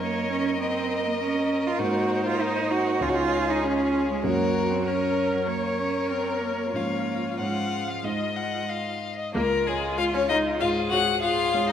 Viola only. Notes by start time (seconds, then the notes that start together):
Already playing: C#5
0.59 D#5
1.81 D#4
3.64 F4
4.25 F#4
4.86 A#4
5.47 C#5
6.09 A#4
6.74 F4
9.35 A#3
9.66 G#3
9.98 F4
10.14 C#4
10.29 D#4
10.60 F4
10.92 F#4
11.22 F4